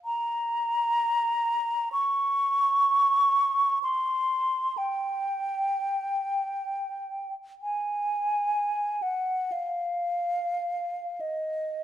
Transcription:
flute
0.05 A#5
1.92 C#6
3.83 C6
4.78 G5
7.62 G#5
9.02 F#5
9.52 F5
11.21 D#5

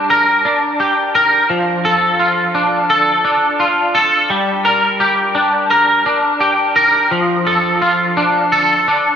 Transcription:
clean electric guitar
Already playing: G3 D4 G4
0.10 A#4
0.45 D4
0.80 G4
1.15 A#4
1.50 F3
1.85 A4
2.19 F4
2.55 D4
2.90 A4
3.25 D4
3.60 F4
3.95 A4
4.30 G3
4.65 A#4
5.00 G4
5.35 D4
5.70 A#4
6.06 D4
6.40 G4
6.76 A#4
7.11 F3
7.47 A4
7.82 F4
8.17 D4
8.52 A4
8.88 D4

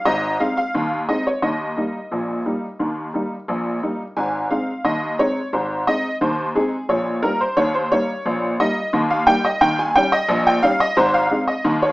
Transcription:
honky-tonk piano
0.05 G#1 G#2 D#5
0.40 G#3 C4 D#4 F5
0.57 F5
0.75 D#2 D#3
1.08 G#3 C4 D#4 D#5
1.27 C#5
1.42 D#2 D#3 D#5
1.77 G3 A#3 D#4
2.11 A#1 A#2
2.46 G3 A#3 D#4
2.79 D#2 D#3
3.14 G3 A#3 D#4
3.48 A#1 A#2
3.83 G3 A#3 D#4
4.17 G#1 G#2 G#5
4.50 G#3 C4 D#4 F5
4.85 D#2 D#3 D#5
5.19 G#3 C4 D#4 C#5
5.53 G#1 G#2 C5
5.87 G#3 C4 D#4 D#5
6.21 D#2 D#3 C5
6.55 G#3 C4 D#4 G#4
6.89 A#1 A#2 C#5
7.23 G3 A#3 D#4 A#4
7.41 C5
7.57 D#2 D#3 C#5
7.74 C5
7.92 G3 A#3 D#4 C#5
8.25 A#1 A#2
8.60 G3 A#3 D#4 D#5
8.93 D#2 D#3
9.10 F5
9.27 G3 A#3 D#4 G5
9.45 D#5
9.61 D#2 D#3 G5
9.79 G#5
9.96 G3 C#4 D#4 G5
10.12 D#5
10.29 A#1 A#2
10.47 G5
10.63 G3 C#4 D#4 F5
10.80 D#5
10.97 G#1 G#2 C5
11.14 F5
11.31 G#3 C4 D#4
11.48 D#5
11.64 D#2 D#3
11.82 C#5

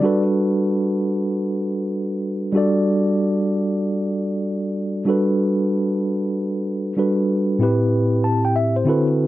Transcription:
tine electric piano
Already playing: D5
0.01 G3 D4 F#4 A4
0.06 B4
2.52 G3 D4 F#4 A4
2.57 D5
5.05 G3 D4 F#4 A4
5.10 B4
6.97 G3 D4 F#4 A4 B4
7.59 A2 C4 E4 G4
7.63 B4
8.24 A5
8.45 G5
8.56 E5
8.76 C5
8.85 D3 C4 E4 F#4 A4
8.90 B4

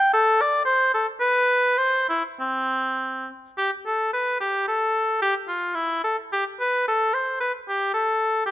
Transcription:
oboe
Already playing: G5
0.14 A4
0.41 D5
0.65 C5
0.94 A4
1.21 B4
1.78 C5
2.09 E4
2.40 C4
3.58 G4
3.87 A4
4.13 B4
4.40 G4
4.68 A4
5.22 G4
5.48 F4
5.75 E4
6.04 A4
6.32 G4
6.60 B4
6.88 A4
7.14 C5
7.40 B4
7.69 G4
7.94 A4
8.46 G4

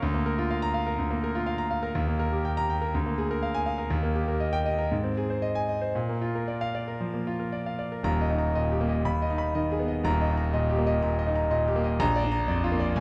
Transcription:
grand piano
0.02 D2
0.14 A#3
0.26 A#4
0.38 F4
0.51 F5
0.62 A#5
0.74 F5
0.87 A#4
0.99 D2
1.11 A#3
1.24 A#4
1.35 F4
1.47 F5
1.58 A#5
1.71 F5
1.83 A#4
1.95 D#2
2.07 A#3
2.19 A#4
2.32 G4
2.45 G5
2.57 A#5
2.70 G5
2.81 A#4
2.94 D2
3.06 A#3
3.18 G#4
3.31 A#4
3.43 F5
3.54 G#5
3.66 F5
3.78 A#4
3.90 D#2
4.03 A#3
4.16 G4
4.28 A#4
4.40 D#5
4.53 G5
4.66 D#5
4.78 A#4
4.91 G#2
5.04 C4
5.17 G#4
5.30 C5
5.42 D#5
5.55 G#5
5.69 D#5
5.81 C5
5.95 A#2
6.09 A#3
6.21 F4
6.35 A#4
6.48 D5
6.61 F5
6.75 D5
6.88 A#4
7.00 F3
7.14 A#3
7.27 F4
7.40 A#4
7.52 D5
7.66 F5
7.79 D5
7.92 A#4
8.03 D#1 D#2 A#5
8.21 D#5
8.30 D#4
8.38 A#5
8.55 A#2 D#5
8.72 G4
8.81 A#3
8.89 D#5
9.05 D#2 B5
9.22 D#5
9.30 D#4
9.38 B5
9.55 D#3 D#5
9.72 G#4
9.80 B3
9.88 D#5
10.04 D#1 D#2 A#5
10.21 D#5
10.30 D#4
10.37 A#5
10.54 A#2 D#5
10.70 G4
10.78 A#3
10.87 D#5
11.02 A#2 A#5
11.19 D#5
11.27 D#4
11.35 A#5
11.51 A#2 D#5
11.68 G4
11.76 A#3
11.84 D#5
12.00 A#1 A#5
12.16 D5
12.24 D4
12.32 A#5
12.48 F2 D5
12.64 F4
12.72 A#3
12.80 D5
12.96 C2 G#5

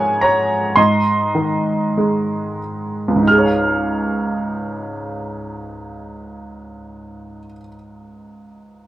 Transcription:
upright piano
Already playing: G#2 F3 G#3 A#4 C#5 F#5 G#5
0.21 C#5 A#5
0.76 G#2 D#5 C6
1.35 D#3
1.98 G#3
3.08 C#2
3.16 G#2
3.23 D#4
3.27 G#4 F6
3.38 C#5
3.45 F5

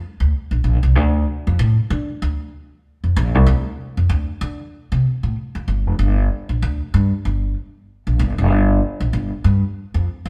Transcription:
upright bass
0.20 D2
0.51 A#1
0.64 A#1
0.83 C2
0.96 D2
1.47 F2
1.59 A2
1.90 D3
2.22 D2
3.04 F2
3.16 A#1
3.35 C2
3.46 D2
3.97 F2
4.09 D2
4.41 D3
4.92 C3
5.23 A2
5.55 F2
5.68 G1
5.86 F1
5.99 G1
6.49 A#1
6.62 D2
6.94 G2
7.25 G1
8.07 A#1
8.19 G1
8.38 F1
8.50 G1
9.00 A#1
9.13 G1
9.44 G2
9.94 F2
10.26 D2

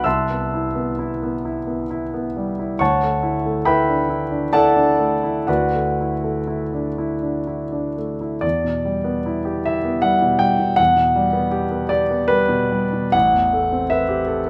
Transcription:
grand piano
0.04 C2 E5 A5 C6 E6
0.30 B3
0.54 E4
0.75 B3
0.99 E4
1.23 B3
1.45 E4
1.67 B3
1.90 E4
2.14 B3
2.37 G3
2.59 E4
2.79 D2 C#5 F#5 A5 C#6
3.03 A3
3.23 E4
3.46 A3
3.65 E4 B4 E5 G5 B5
3.89 D4
4.09 E4
4.31 D4
4.53 E4 A4 D5 F#5 A5
4.76 D4
4.99 A3
5.23 E4
5.47 D2 F#4 B4 D5 F#5
5.74 A3
6.00 E4
6.23 A3
6.47 E4
6.74 D4
6.98 E4
7.22 D4
7.47 E4
7.72 D4
7.98 A3
8.21 E4
8.41 E2 D5
8.64 B2
8.85 G3
9.04 B3
9.26 E4
9.45 G4
9.66 E4 E5
9.84 B3
10.02 G3 F#5
10.22 B2
10.39 G3 G5
10.59 B2
10.76 E2 F#5
10.96 B2
11.16 G3
11.33 B3
11.51 G4
11.71 B3
11.89 G4 D5
12.10 B3
12.28 G3 B4
12.49 B2
12.72 G3
12.93 B2
13.12 A1 F#5
13.32 E2
13.53 A3
13.72 C4
13.90 B4 E5
14.09 G4
14.27 A4
14.46 B4

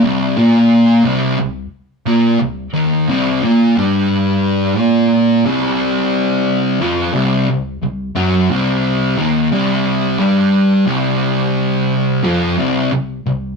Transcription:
distorted electric guitar
0.03 C2 C3
0.37 A#2 A#3
1.05 C2 C3
1.38 C2
2.06 A#2 A#3
2.40 C2
2.74 D#2 D#3
3.08 C2 C3
3.42 A#2 A#3
3.77 G2 G3
4.78 A#2 A#3
5.46 C2 C3
6.81 F2 F3
7.14 C2 C3
7.50 C2
7.82 C2
8.15 F#2 F#3
8.50 C2 C3
9.18 D#2 D#3
9.51 C2 C3
10.19 G2 G3
10.87 C2 C3
12.23 F2 F3
12.58 C2 C3
12.92 C2
13.26 C2

